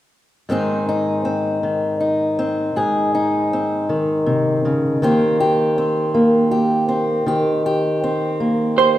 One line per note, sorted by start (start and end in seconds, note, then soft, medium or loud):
0.49 2.71 G#2 medium
0.49 1.62 D#3 soft
0.49 1.24 C4 soft
0.49 0.88 D#4 soft
0.49 2.72 G#4 soft
0.89 2.00 D#4 soft
1.25 2.38 C4 soft
1.63 3.88 D#3 soft
2.00 3.14 D#4 soft
2.39 3.53 C4 soft
2.76 4.97 G#2 medium
2.76 4.97 G#4 soft
3.15 5.03 D#4 soft
3.53 5.03 C4 soft
3.89 5.01 D#3 soft
4.26 4.64 C3 soft
4.65 5.02 C#3 soft
5.02 7.25 D#3 medium
5.02 6.14 A#3 soft
5.02 5.78 C4 soft
5.02 5.40 G4 medium
5.40 6.50 G4 medium
5.78 6.88 C4 soft
6.14 7.23 A#3 soft
6.51 7.22 G4 soft
6.89 8.02 C4 soft
7.26 8.98 D#3 medium
7.26 7.65 G4 soft
7.66 8.78 G4 medium
8.04 8.98 C4 soft
8.40 8.98 A#3 soft
8.78 8.98 G4 soft
8.78 8.98 C5 medium